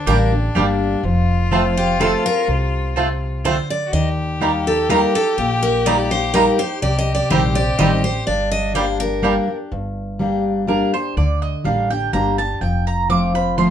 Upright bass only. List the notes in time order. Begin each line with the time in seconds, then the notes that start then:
0.07 A1
0.55 G1
1.03 F1
2.48 C2
3.93 D#2
5.38 A#1
6.83 C2
7.31 A#1
7.79 A1
8.27 G1
9.72 G1
11.17 D2
11.65 A1
12.13 G1
12.61 F1